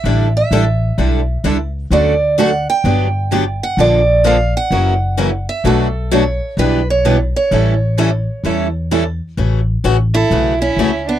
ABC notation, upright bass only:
X:1
M:4/4
L:1/8
Q:"Swing" 1/4=129
K:Amix
V:1 name="Upright bass" clef=bass
A,,,2 A,,,2 B,,,2 C,,2 | D,,4 G,,,4 | _B,,,4 F,,,4 | B,,,4 B,,,4 |
A,,,4 E,,4 | [K:A] A,,,2 A,,,2 B,,,2 C,,2 |]